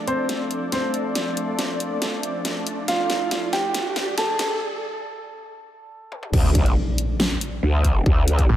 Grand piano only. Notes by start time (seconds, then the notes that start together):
0.07 C4 C5
0.72 C4 C5
2.88 F4 F5
3.53 G4 G5
4.18 A4 A5